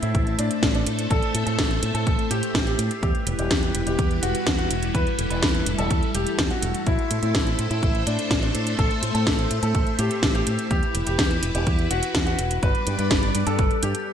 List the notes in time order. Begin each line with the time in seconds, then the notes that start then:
Already playing: A3 A4 C5 E5
0.02 A2 E4, closed hi-hat
0.15 A1, kick, closed hi-hat
0.27 closed hi-hat
0.39 A2 D4, closed hi-hat
0.51 closed hi-hat
0.63 A1, kick, snare, closed hi-hat
0.74 D4, closed hi-hat
0.87 A2, closed hi-hat
0.99 closed hi-hat
1.10 A1 A4, kick, closed hi-hat
1.23 closed hi-hat
1.35 A2, closed hi-hat
1.46 A2 A4, closed hi-hat
1.59 A1, kick, snare, closed hi-hat
1.71 closed hi-hat
1.83 A2, closed hi-hat
1.94 A2 A4, closed hi-hat
2.07 A1, kick, closed hi-hat
2.19 closed hi-hat
2.31 A2 G4, closed hi-hat
2.43 closed hi-hat
2.55 A1, kick, snare, closed hi-hat
2.66 G4, closed hi-hat
2.79 A2, closed hi-hat
2.91 closed hi-hat
3.02 E2 G3 E4 G4 B4, kick, closed hi-hat
3.15 closed hi-hat
3.27 E1, closed hi-hat
3.39 E1 G4, closed hi-hat
3.51 E2, kick, snare, closed hi-hat
3.63 closed hi-hat
3.75 E1, closed hi-hat
3.86 E1 G4, closed hi-hat
3.99 E2, kick, closed hi-hat
4.11 closed hi-hat
4.22 E1 F#4, closed hi-hat
4.35 closed hi-hat
4.47 E2, kick, snare, closed hi-hat
4.58 F#4, closed hi-hat
4.71 E1, closed hi-hat
4.83 closed hi-hat
4.94 E2 A4 B4, kick, closed hi-hat
5.07 closed hi-hat
5.19 E1, closed hi-hat
5.30 E1 B4, closed hi-hat
5.43 E2, kick, snare, closed hi-hat
5.55 closed hi-hat
5.66 E1, closed hi-hat
5.78 E1 A4, closed hi-hat
5.91 E2, kick, closed hi-hat
6.03 closed hi-hat
6.15 E1 G4, closed hi-hat
6.27 closed hi-hat
6.39 E2, kick, snare, closed hi-hat
6.51 F#4, closed hi-hat
6.63 E1, closed hi-hat
6.75 closed hi-hat
6.87 A1 A3 E4 C5 E5, kick, closed hi-hat
6.99 closed hi-hat
7.11 A2, closed hi-hat
7.23 A2 E4, closed hi-hat
7.35 A1, kick, snare, closed hi-hat
7.47 closed hi-hat
7.59 A2, closed hi-hat
7.71 A2 E4, closed hi-hat
7.83 A1, kick, closed hi-hat
7.95 closed hi-hat
8.07 A2 D4, closed hi-hat
8.19 closed hi-hat
8.31 A1, kick, snare, closed hi-hat
8.42 D4, closed hi-hat
8.55 A2, closed hi-hat
8.67 closed hi-hat
8.78 A1 A4, kick, closed hi-hat
8.91 closed hi-hat
9.03 A2, closed hi-hat
9.14 A2 A4, closed hi-hat
9.27 A1, kick, snare, closed hi-hat
9.39 closed hi-hat
9.51 A2, closed hi-hat
9.63 A2 A4, closed hi-hat
9.75 A1, kick, closed hi-hat
9.87 closed hi-hat
9.99 A2 G4, closed hi-hat
10.11 closed hi-hat
10.23 A1, kick, snare, closed hi-hat
10.34 G4, closed hi-hat
10.47 A2, closed hi-hat
10.59 closed hi-hat
10.70 E2 E4 G4 B4, kick, closed hi-hat
10.83 closed hi-hat
10.95 E1, closed hi-hat
11.07 E1 G4, closed hi-hat
11.19 E2, kick, snare, closed hi-hat
11.31 closed hi-hat
11.43 E1, closed hi-hat
11.55 E1 G4, closed hi-hat
11.67 E2, kick, closed hi-hat
11.79 closed hi-hat
11.91 E1 F#4, closed hi-hat
12.03 closed hi-hat
12.15 E2, kick, snare, closed hi-hat
12.26 F#4, closed hi-hat
12.39 E1, closed hi-hat
12.51 closed hi-hat
12.63 G1 G3 B4 D5, kick, closed hi-hat
12.75 closed hi-hat
12.87 G2, closed hi-hat
12.98 G2 B4, closed hi-hat
13.11 G1, kick, snare, closed hi-hat
13.23 closed hi-hat
13.35 G2, closed hi-hat
13.47 G2 A4, closed hi-hat
13.59 G1, kick, closed hi-hat
13.71 closed hi-hat
13.83 G2 G4, closed hi-hat
13.95 closed hi-hat